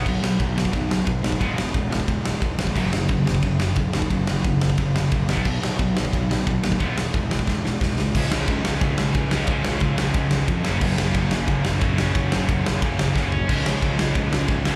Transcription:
<<
  \new Staff \with { instrumentName = "Distorted electric guitar" } { \clef bass \time 4/4 \key fis \major \tempo 4 = 179 <b, fis>8 <b, fis>8 <b, fis>8 <b, fis>8 <b, fis>8 <b, fis>8 <b, fis>8 <b, fis>8 | <e gis b>8 <e gis>8 <e gis>8 <e gis>8 <e gis>8 <e gis>8 <e gis>8 <e gis>8 | <fis, cis fis>8 <fis, cis>8 <fis, cis>8 <fis, cis>8 <fis, cis>8 <fis, cis>8 <fis, cis>8 <fis, cis>8 | <fis, cis>8 <fis, cis>8 <fis, cis>8 <fis, cis>8 <fis, cis>8 <fis, cis>8 <fis, cis>8 <b, fis b>8 |
<b, fis>8 <b, fis>8 <b, fis>8 <b, fis>8 <b, fis>8 <b, fis>8 <b, fis>8 <b, fis>8 | <e gis b>8 <e gis>8 <e gis>8 <e gis>8 <e gis>8 <e gis>8 <e gis>8 <e gis>8 | <cis eis gis cis'>2.~ <cis eis gis cis'>8 <cis eis gis cis'>8 | <cis eis gis cis'>2.~ <cis eis gis cis'>8 <fis, cis fis ais cis'>8~ |
<fis, cis fis ais cis'>2. <fis, cis fis ais cis'>8 <fis, cis fis ais cis'>8~ | <fis, cis fis ais cis'>2. <fis, cis fis ais cis'>8 r8 | <cis eis gis cis'>2.~ <cis eis gis cis'>8 <cis eis gis cis'>8 | }
  \new Staff \with { instrumentName = "Picked electric bass" } { \clef bass \time 4/4 \key fis \major b,,8 b,,8 b,,4 b,,4 b,,8 gis,8 | e,,8 e,,8 e,,4 e,,4 e,,8 eis,,8 | fis,,8 fis,,8 fis,,4 fis,,4 fis,,8 dis,8 | fis,,8 fis,,8 fis,,4 fis,,4 fis,,8 b,,8 |
b,,8 b,,8 b,,4 b,,4 b,,8 dis,8 | e,,8 e,,8 e,,4 e,,4 e,,8 cis,8 | cis,8 cis,8 cis,8 cis,8 cis,8 cis,8 cis,4 | cis,8 cis,8 cis,8 cis,8 cis,8 cis,8 eis,8 fis,,8 |
fis,,8 fis,,8 fis,,8 fis,,8 fis,,8 fis,,8 fis,,4 | fis,,8 fis,,8 fis,,8 fis,,8 fis,,8 fis,,8 fis,,4 | cis,8 cis,8 cis,8 cis,8 cis,8 cis,8 cis,4 | }
  \new DrumStaff \with { instrumentName = "Drums" } \drummode { \time 4/4 <cymc bd>8 sn8 <bd cymr>8 sn16 bd16 <bd cymr>8 sn8 <bd cymr>8 sn16 bd16 | <bd cymr>8 sn8 <bd cymr>8 sn16 bd16 <bd cymr>8 sn8 <bd cymr>8 sn16 bd16 | <cymc bd>8 sn8 <bd cymr>8 sn16 bd16 <bd cymr>8 sn8 <bd cymr>8 sn16 bd16 | <bd cymr>8 sn8 <bd cymr>8 sn16 bd16 <bd cymr>8 sn8 <bd cymr>8 sn16 bd16 |
<cymc bd>8 sn8 <bd cymr>8 sn16 bd16 <bd cymr>8 sn8 <bd cymr>8 sn16 bd16 | <bd cymr>8 sn8 <bd cymr>8 sn16 bd16 <bd sn>8 sn8 <bd sn>8 sn8 | <cymc bd>8 sn8 <bd cymr>8 sn8 <bd cymr>8 sn8 <bd cymr>8 sn8 | <bd cymr>8 sn8 <bd cymr>8 sn8 <bd cymr>8 sn8 <bd cymr>8 sn8 |
<cymc bd>8 sn8 <bd cymr>8 sn8 <bd cymr>8 sn8 <bd cymr>8 sn8 | <bd cymr>8 sn8 <bd cymr>8 sn8 <bd cymr>8 sn8 <bd sn>8 tomfh8 | <cymc bd>8 sn8 <bd cymr>8 sn8 <bd cymr>8 sn8 <bd cymr>8 sn8 | }
>>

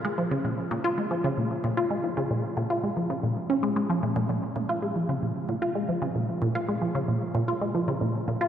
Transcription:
\new Staff \with { instrumentName = "Synth arpeggio sound" } { \clef bass \time 4/4 \key bes \minor \tempo 4 = 113 aes16 f16 des16 bes,16 r16 bes,16 f'16 aes16 f16 des16 bes,16 r16 bes,16 f'16 aes16 f16 | des16 bes,16 r16 bes,16 f'16 aes16 f16 des16 bes,16 r16 des'16 aes16 aes16 f16 bes,16 bes,16 | bes,16 r16 bes,16 f'16 aes16 f16 des16 bes,16 r16 bes,16 f'16 aes16 f16 des16 bes,16 r16 | bes,16 f'16 aes16 f16 des16 bes,16 r16 bes,16 f'16 aes16 f16 des16 bes,16 r16 bes,16 f'16 | }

